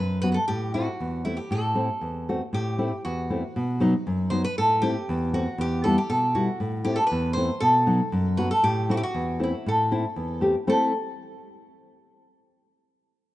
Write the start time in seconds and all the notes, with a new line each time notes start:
Already playing: B4
0.00 F#2
0.22 F#3 B3 F#4 B4
0.32 A4 B4
0.48 A2 G4
0.74 A3 C4 E4 F#4
1.00 E2
1.25 A3 C4 E4
1.37 G4
1.51 A2 A4
1.75 A3 C4 E4
2.01 E2
2.29 A3 C4 F#4
2.53 A2 G4
2.78 A3 C4 E4
3.05 E2 F#4
3.30 A3 C4 E4
3.56 B2
3.80 F#3 B3 D#4
4.07 F#2
4.30 F#3 B3 D#4 C5
4.44 B4
4.58 A2 A4
4.82 A3 C4 E4 G4
5.09 E2
5.33 A3 C4 F#4
5.58 E2 G4
5.84 G3 B3 E4 A4
5.98 G4
6.09 B2 A4
6.35 G3 B3 E4 F#4
6.60 A2
6.84 A3 C4 E4 G4
6.96 A4
7.07 B4
7.12 E2
7.33 A3 C4 E4 C5
7.60 B2 A4
7.86 F#3 B3 D#4
8.12 F#2
8.37 F#3 B3 F#4 B4
8.51 A4
8.63 A2 G4
8.89 A3 C4 E4 F#4
8.97 G4
9.03 F#4
9.14 E2
9.39 A3 C4 E4
9.43 E4
9.66 A2 A4
9.91 A3 C4 E4
10.16 E2
10.41 A3 C4 G4
10.67 A3 C4 E4 A4